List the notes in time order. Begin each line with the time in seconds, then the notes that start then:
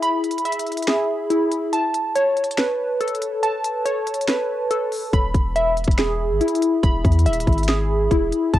Already playing: E4 G#4 E5
0.02 B5, closed hi-hat
0.24 closed hi-hat
0.31 closed hi-hat
0.38 closed hi-hat
0.45 E5, closed hi-hat
0.52 closed hi-hat
0.59 closed hi-hat
0.66 closed hi-hat
0.72 closed hi-hat
0.77 closed hi-hat
0.82 closed hi-hat
0.87 G#4, finger snap, snare, closed hi-hat
1.30 E4, closed hi-hat
1.52 closed hi-hat
1.73 A5, closed hi-hat
1.94 closed hi-hat
2.15 C#5, closed hi-hat
2.37 closed hi-hat
2.44 closed hi-hat
2.51 closed hi-hat
2.57 B4, finger snap, snare, closed hi-hat
3.01 A4, closed hi-hat
3.08 closed hi-hat
3.15 closed hi-hat
3.22 closed hi-hat
3.43 A5, closed hi-hat
3.64 closed hi-hat
3.85 C#5, closed hi-hat
4.07 closed hi-hat
4.14 closed hi-hat
4.21 closed hi-hat
4.28 B4, finger snap, snare, closed hi-hat
4.71 A4, closed hi-hat
4.92 open hi-hat
5.13 E1 B5, kick, closed hi-hat
5.34 E1, kick, closed hi-hat
5.56 E5, closed hi-hat
5.77 closed hi-hat
5.84 E1, kick, closed hi-hat
5.91 closed hi-hat
5.98 G#4, finger snap, snare, closed hi-hat
6.30 G#1
6.41 E4, closed hi-hat
6.48 closed hi-hat
6.55 closed hi-hat
6.62 closed hi-hat
6.83 E1 B5, kick, closed hi-hat
7.05 E2, kick, closed hi-hat
7.12 closed hi-hat
7.19 closed hi-hat
7.26 D#1 E5, closed hi-hat
7.33 closed hi-hat
7.40 closed hi-hat
7.47 G#1, kick, closed hi-hat
7.53 closed hi-hat
7.58 closed hi-hat
7.63 closed hi-hat
7.68 G#4, finger snap, snare, closed hi-hat
8.11 E1 E4, kick, closed hi-hat
8.32 closed hi-hat
8.54 A1 A5, kick, closed hi-hat